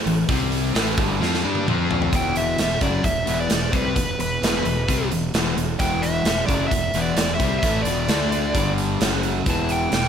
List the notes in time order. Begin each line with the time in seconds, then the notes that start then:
0.06 A1 A2 E3, open hi-hat
0.29 C2 C3 G3 C4, kick, open hi-hat
0.52 open hi-hat
0.75 A1 A2 E3 A3, snare, open hi-hat
0.98 G1 G2 D3 G3, kick, open hi-hat
1.20 F2 F3 C4 F4, snare
1.34 snare
1.44 G2 G3 D4 G4
1.55 high tom
1.68 F2 F3 C4 F4, mid tom
1.91 floor tom
2.02 floor tom
2.13 E1 E2 B2 E3 G5, kick, closed hi-hat
2.36 E5, closed hi-hat
2.58 E1 E2 B2, snare, closed hi-hat
2.81 F#1 F#2 C#3 F#3 D5, kick, closed hi-hat
3.04 E1 E2 B2 E5, kick, closed hi-hat
3.26 E1 E2 B2 E3, closed hi-hat
3.40 D5
3.49 E1 E2 B2, snare, closed hi-hat
3.73 C2 C3 G3 C4 B4, kick, closed hi-hat
3.96 E1 E2 B2 B4, kick, closed hi-hat
4.19 E1 E2 B2 B4, closed hi-hat
4.43 E1 E2 B2 E3, snare, closed hi-hat
4.65 E1 E2 B2, closed hi-hat
4.88 C2 C3 G3 C4, kick, closed hi-hat
5.12 E1 E2 B2, closed hi-hat
5.34 E1 E2 B2 E3, snare, closed hi-hat
5.57 E1 E2 B2, closed hi-hat
5.79 E1 E2 B2 E3 G5, kick, closed hi-hat
6.02 E5, closed hi-hat
6.25 E1 E2 B2, snare, closed hi-hat
6.46 F#1 F#2 C#3 F#3 D5, kick, closed hi-hat
6.68 E1 E2 B2 E5, kick, closed hi-hat
6.94 E1 E2 B2 E3, closed hi-hat
7.01 D5
7.16 E1 E2 B2, snare, closed hi-hat
7.35 E5
7.39 C2 C3 G3 C4, kick, closed hi-hat
7.59 E5
7.63 A1 A2 E3 A3, kick, closed hi-hat
7.83 E1 E2 D5, closed hi-hat
7.87 B2 E3
8.08 D2 D3 A3 D4, snare, closed hi-hat
8.32 closed hi-hat
8.55 G1 G2 D3 G3, kick, closed hi-hat
8.78 closed hi-hat
9.01 F#1 F#2 C#3 F#3, snare, closed hi-hat
9.23 closed hi-hat
9.46 E1 E2 B2 E3 A5, kick, closed hi-hat
9.69 G5, closed hi-hat
9.92 E1 E2 B2, snare, closed hi-hat